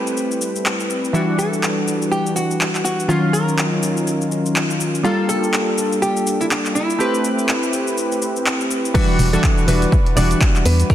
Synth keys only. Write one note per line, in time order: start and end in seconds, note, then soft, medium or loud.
0.00 1.11 A3 medium
0.00 1.12 C4 medium
0.00 1.12 G4 medium
0.00 1.12 B4 medium
1.13 3.06 E3 medium
1.13 3.07 G3 medium
1.13 3.07 D4 medium
1.13 3.07 F#4 medium
3.08 5.01 D#3 medium
3.08 5.02 F#3 medium
3.08 5.02 C#4 medium
3.08 5.03 F4 medium
5.03 6.97 G3 medium
5.03 6.97 A#3 medium
5.03 6.97 F4 medium
5.03 6.98 A4 medium
6.98 8.92 A3 medium
6.98 8.92 C4 medium
6.98 8.92 G4 medium
6.98 8.93 B4 medium
8.94 9.27 E3 loud
8.94 9.28 G3 medium
8.94 9.28 D4 medium
8.94 9.28 F#4 loud
9.33 9.65 E3 medium
9.33 9.65 G3 medium
9.33 9.66 D4 medium
9.33 9.66 F#4 loud
9.67 9.93 E3 medium
9.67 9.93 G3 medium
9.67 9.94 D4 medium
9.67 9.94 F#4 loud
10.16 10.88 E3 medium
10.16 10.88 G3 medium
10.16 10.89 D4 medium
10.16 10.89 F#4 medium